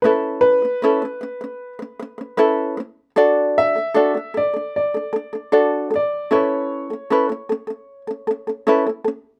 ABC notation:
X:1
M:4/4
L:1/16
Q:1/4=76
K:Amix
V:1 name="Upright piano"
B2 B12 z2 | z2 e4 d2 d6 d2 | c12 z4 |]
V:2 name="Ukulele"
[CEAB]3 [CB] [CEAB] [CB] [CB] [CB]2 [CB] [CB] [CB] [CEAB]2 [CB]2 | [DFAd]3 [DA] [DFAd] [DA] [DA] [DA]2 [DA] [DA] [DA] [DFAd]2 [DA]2 | [CEAB]3 [CA] [CEAB] [CA] [CA] [CA]2 [CA] [CA] [CA] [CEAB] [CA] [CA]2 |]